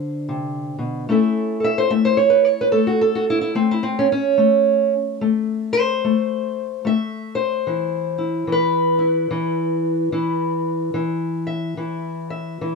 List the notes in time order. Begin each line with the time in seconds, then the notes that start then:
Already playing: D3 C5
0.29 C3
0.78 B2
1.09 A3 C#4 E4 A4 E5
1.60 A4
1.64 E5
1.78 C5
1.90 A3 E5
2.05 C5
2.17 C#5
2.30 B4
2.45 C#5
2.61 B4
2.72 A3 A4
2.87 F#4
3.01 A4
3.15 F#4
3.30 E4
3.41 E4
3.55 A3 C4
3.71 E4
3.83 C4
3.99 C#4
4.12 C#4
4.38 A3
5.21 A3
5.73 C5
6.04 A3
6.85 A3 E5
7.35 C5
7.67 E3
8.18 E4
8.47 E3
8.52 B4
8.99 E4
9.31 E3
10.12 E3 E4
10.94 E3
11.47 E5
11.77 E3
12.30 E5
12.61 E3